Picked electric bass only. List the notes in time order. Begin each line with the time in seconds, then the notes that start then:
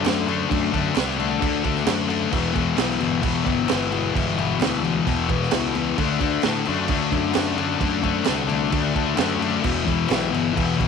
0.05 F#2
0.51 F#2
0.97 C2
1.43 D2
1.86 F#2
2.34 E1
2.77 B1
3.01 G1
3.24 E1
3.47 G1
3.71 G1
4.16 G1
4.61 D2
5.07 E1
5.52 C#2
5.99 D2
6.45 A2
6.68 F#2
6.90 D2
7.13 F#2
7.36 F#2
7.81 F#2
8.29 C2
8.73 D2
9.19 F#2
9.65 E1
10.11 B1
10.33 G1
10.57 E1
10.80 G1